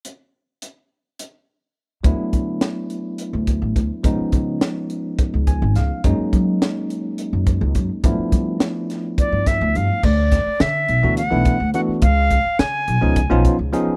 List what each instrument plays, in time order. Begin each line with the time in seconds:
0.05 closed hi-hat
0.62 closed hi-hat
1.19 closed hi-hat
2.04 upright bass D2, tine electric piano F#3 A3 B3 D4 E4, kick, closed hi-hat
2.20 muted upright bass stroke
2.33 upright bass D3, kick, closed hi-hat
2.61 snare, closed hi-hat
2.90 closed hi-hat
3.18 closed hi-hat
3.33 upright bass D2
3.47 kick, closed hi-hat
3.62 upright bass A1
3.76 upright bass D2, kick, closed hi-hat
4.03 upright bass C#2, tine electric piano F3 G#3 B3 C#4 D#4, kick, closed hi-hat
4.20 muted upright bass stroke
4.32 upright bass C#3, kick, closed hi-hat
4.61 snare, closed hi-hat
4.90 closed hi-hat
5.19 kick, closed hi-hat
5.34 upright bass C#2
5.47 tine electric piano G#5, kick, closed hi-hat
5.62 upright bass G#1
5.76 upright bass C#2, tine electric piano F5, snare, closed hi-hat
6.04 upright bass F#2, tine electric piano F#3 G#3 A#3 C#4 D#4, kick, closed hi-hat
6.18 muted upright bass stroke
6.33 upright bass F#3, kick, closed hi-hat
6.62 snare, closed hi-hat
6.90 closed hi-hat
7.18 closed hi-hat
7.33 upright bass F#2
7.47 kick, closed hi-hat
7.61 upright bass C#2
7.75 upright bass F#2, kick, closed hi-hat
8.04 upright bass G2, tine electric piano F3 A3 B3 D4 E4, kick, closed hi-hat
8.18 muted upright bass stroke
8.32 upright bass G3, kick, closed hi-hat
8.60 snare, closed hi-hat
8.90 snare, closed hi-hat
9.18 flute D5, kick, closed hi-hat
9.32 upright bass G2
9.46 flute E5, kick, snare, closed hi-hat
9.61 upright bass D2
9.75 upright bass G2, flute F5, closed hi-hat
10.03 upright bass D2, flute D5, kick, crash
10.31 kick, snare, closed hi-hat
10.47 muted upright bass stroke
10.60 upright bass D3, flute E5, snare, closed hi-hat
10.89 upright bass B1, closed hi-hat
11.03 upright bass D2, tine electric piano E3 A3 B3 D4 F#4
11.17 flute F#5, closed hi-hat
11.31 upright bass B1, tine electric piano E3 A3 B3 D4 E4
11.45 kick, closed hi-hat
11.60 upright bass D2
11.74 tine electric piano E3 A3 B3 D4 F#4, flute F#5, closed hi-hat
11.89 muted upright bass stroke
12.02 upright bass C#2, flute F5, kick, closed hi-hat
12.30 kick, closed hi-hat
12.45 muted upright bass stroke
12.59 upright bass C#3, flute G#5, snare, closed hi-hat
12.88 upright bass B1, closed hi-hat
13.01 upright bass C#2, tine electric piano F3 B3 C#4 D#4 G#4
13.16 kick, closed hi-hat
13.30 upright bass B1, tine electric piano F3 B3 C#4 D#4 F4
13.45 kick, closed hi-hat
13.59 upright bass C#2
13.73 tine electric piano F3 B3 C#4 D#4 G#4, closed hi-hat
13.87 muted upright bass stroke